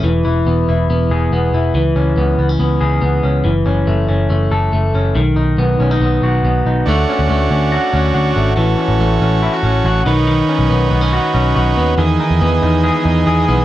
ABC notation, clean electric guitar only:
X:1
M:4/4
L:1/16
Q:1/4=141
K:E
V:1 name="Clean electric guitar"
E,2 E2 B,2 E2 B,2 G2 B,2 E2 | E,2 C2 B,2 B, C B,2 G2 B,2 C2 | E,2 C2 A,2 C2 A,2 A2 A,2 C2 | D,2 D2 B,2 C D B,2 F2 B,2 D2 |
A,2 C2 A,2 C2 F2 C2 F2 A,2 | E,2 C2 A,2 C2 E F C2 F2 D,2 | D,2 C2 B,2 B, C F2 C2 F2 B,2 | D,2 D2 B,2 D2 G2 D2 G2 B,2 |]